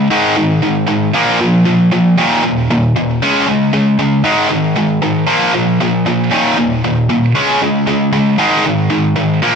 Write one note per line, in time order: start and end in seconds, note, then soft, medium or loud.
0.10 0.35 G#2 medium
0.10 0.35 D#3 loud
0.10 0.35 G#3 loud
0.36 0.59 G#2 medium
0.36 0.60 D#3 medium
0.63 0.86 G#2 medium
0.63 0.86 D#3 medium
0.88 1.11 G#2 medium
0.88 1.11 D#3 medium
1.14 1.38 A#2 medium
1.14 1.39 F3 medium
1.14 1.39 A#3 medium
1.40 1.63 A#2 medium
1.40 1.64 F3 medium
1.65 1.89 A#2 medium
1.65 1.89 F3 medium
1.92 2.15 A#2 medium
1.92 2.15 F3 medium
2.18 2.42 D#2 loud
2.18 2.43 A#2 loud
2.18 2.43 D#3 loud
2.44 2.67 D#2 medium
2.44 2.67 A#2 medium
2.70 2.93 D#2 medium
2.70 2.94 A#2 medium
2.96 3.19 D#2 medium
2.96 3.19 A#2 medium
3.22 3.46 C#3 medium
3.22 3.46 G#3 loud
3.22 3.47 C#4 loud
3.47 3.71 C#3 medium
3.47 3.71 G#3 medium
3.73 3.97 C#3 medium
3.73 3.97 G#3 medium
3.99 4.23 C#3 medium
3.99 4.23 G#3 medium
4.24 4.49 G#2 loud
4.24 4.49 D#3 loud
4.24 4.50 G#3 loud
4.50 4.74 G#2 medium
4.50 4.74 D#3 medium
4.76 5.00 G#2 medium
4.76 5.00 D#3 medium
5.02 5.26 G#2 medium
5.02 5.26 D#3 medium
5.27 5.52 A#2 medium
5.27 5.53 F3 medium
5.27 5.53 A#3 medium
5.54 5.78 A#2 medium
5.54 5.78 F3 medium
5.81 6.04 A#2 medium
5.81 6.04 F3 medium
6.06 6.30 A#2 medium
6.06 6.30 F3 medium
6.31 6.56 D#2 loud
6.31 6.56 A#2 loud
6.31 6.57 D#3 loud
6.57 6.81 D#2 medium
6.57 6.81 A#2 medium
6.84 7.08 D#2 medium
6.84 7.08 A#2 medium
7.09 7.33 D#2 medium
7.09 7.33 A#2 medium
7.35 7.60 C#3 medium
7.35 7.60 G#3 loud
7.35 7.60 C#4 loud
7.62 7.85 C#3 medium
7.62 7.85 G#3 medium
7.87 8.11 C#3 medium
7.87 8.11 G#3 medium
8.13 8.36 C#3 medium
8.13 8.36 G#3 medium
8.38 8.63 G#2 medium
8.38 8.63 D#3 medium
8.38 8.64 G#3 loud
8.65 8.88 G#2 medium
8.65 8.89 D#3 medium
8.90 9.14 G#2 medium
8.90 9.14 D#3 medium
9.16 9.40 G#2 medium
9.16 9.40 D#3 medium
9.42 9.55 A#2 medium
9.42 9.55 F3 medium
9.42 9.55 A#3 loud